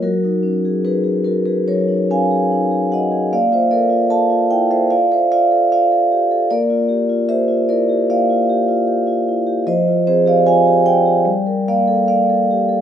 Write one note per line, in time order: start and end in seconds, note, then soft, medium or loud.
0.02 1.63 F#3 medium
0.02 0.81 F#4 medium
0.02 0.84 A#4 medium
0.24 0.57 D#4 medium
0.43 0.76 C#4 medium
0.65 0.85 G#4 medium
0.85 1.17 D#4 medium
0.85 1.03 G#4 medium
0.85 1.25 B4 medium
1.04 1.37 G#4 medium
1.24 1.45 F#4 medium
1.24 1.46 A#4 medium
1.46 1.66 G#4 medium
1.46 1.67 B4 medium
1.68 3.29 F#3 medium
1.68 2.08 A#4 medium
1.68 2.10 C#5 loud
1.88 2.23 D#4 soft
2.10 2.44 C#4 medium
2.10 2.89 F5 medium
2.10 2.93 G#5 loud
2.31 2.64 G#4 medium
2.52 2.84 D#4 medium
2.71 3.04 G#4 medium
2.92 3.12 F#4 soft
2.92 3.30 D#5 medium
2.92 3.32 F#5 medium
3.12 3.32 G#4 medium
3.33 4.87 A#3 medium
3.33 3.52 D5 loud
3.33 3.53 F5 loud
3.52 3.84 F4 medium
3.52 3.71 C5 medium
3.52 3.72 E5 medium
3.71 4.03 A4 medium
3.71 4.09 A#4 medium
3.71 4.11 D5 loud
3.90 4.23 F4 medium
4.10 4.43 A4 medium
4.10 4.49 F5 medium
4.10 4.51 A5 loud
4.30 4.63 F4 medium
4.51 4.71 E4 medium
4.51 4.70 E5 medium
4.51 4.71 G5 loud
4.71 5.03 A4 medium
4.71 4.90 C5 medium
4.71 4.91 E5 loud
4.91 5.23 F4 medium
4.91 5.10 D5 medium
4.91 5.11 F5 loud
5.11 5.43 A4 soft
5.11 5.31 C5 medium
5.11 5.32 E5 loud
5.32 5.63 F4 medium
5.32 5.69 D5 medium
5.32 5.71 F5 loud
5.51 5.83 A4 medium
5.72 6.03 F4 medium
5.72 6.46 D5 medium
5.72 6.50 F5 loud
5.92 6.22 A4 medium
6.12 6.30 G4 medium
6.31 6.50 A4 medium
6.51 8.06 A#3 medium
6.51 7.25 A#4 medium
6.51 7.29 D5 loud
6.70 7.01 F4 medium
6.89 7.20 G4 medium
7.09 7.41 F4 medium
7.29 7.61 G4 medium
7.29 7.66 C5 medium
7.29 7.69 E5 loud
7.48 7.80 F4 medium
7.69 7.89 E4 medium
7.69 8.07 A#4 medium
7.69 8.09 D5 loud
7.89 8.21 G4 medium
8.10 9.64 A#3 medium
8.10 8.47 D5 medium
8.10 8.50 F5 loud
8.30 8.62 F4 medium
8.50 8.81 G4 medium
8.68 9.00 F4 medium
8.87 9.20 G4 medium
9.07 9.39 F4 medium
9.29 9.48 E4 medium
9.47 9.67 G4 medium
9.67 11.22 F3 medium
9.67 10.05 C5 loud
9.67 10.07 D#5 loud
9.88 10.20 F4 medium
10.07 10.39 C4 medium
10.07 10.27 G#4 medium
10.07 10.28 C5 loud
10.26 10.59 G4 medium
10.26 10.47 D5 medium
10.26 10.47 F5 loud
10.47 10.79 F4 medium
10.47 10.84 F5 medium
10.47 10.87 G#5 loud
10.67 10.99 G4 medium
10.86 11.07 F4 medium
10.86 11.63 D5 medium
10.86 11.66 G5 loud
11.06 11.26 G4 medium
11.25 12.81 G3 medium
11.47 11.79 A#4 medium
11.68 12.00 A#3 medium
11.68 12.06 D5 medium
11.68 12.07 F5 loud
11.88 12.20 A4 medium
12.08 12.40 A#3 medium
12.08 12.81 D5 medium
12.08 12.81 F5 loud
12.29 12.61 A4 medium
12.51 12.69 G4 medium
12.69 12.81 A4 medium